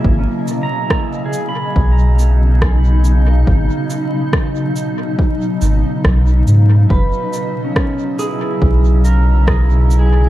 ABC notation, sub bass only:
X:1
M:4/4
L:1/8
Q:"Swing 16ths" 1/4=70
K:G#m
V:1 name="Sub bass" clef=bass
G,,, z3 B,,,4 | G,,, z4 G,,, B,,, G,, | F,,, z3 B,,,4 |]